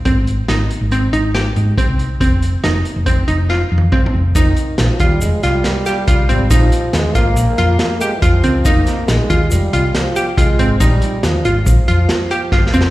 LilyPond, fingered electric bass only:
\new Staff \with { instrumentName = "Fingered electric bass" } { \clef bass \time 5/4 \key f \minor \tempo 4 = 140 aes,,4 aes,,8 r16 aes,,8. aes,,4 aes,8 r16 c,8. | f,,4 f,,8 r16 f,,8. f,,4 f,8 g,,8 f,,8 | f,,8 r8 bes,,16 r16 ees,8 f,,16 r16 c,8 r4 c,8 aes,,8 | bes,,8 r8 ees,16 r16 aes,,8 bes,,16 r16 f,8 r4 f,8 des,8 |
f,,8 r8 bes,,16 r16 ees,8 f,,16 r16 c,8 r4 c,8 aes,,8 | bes,,8 r8 ees,16 r16 aes,,8 bes,,16 r16 f,8 r4 g,,8 f,,8 | }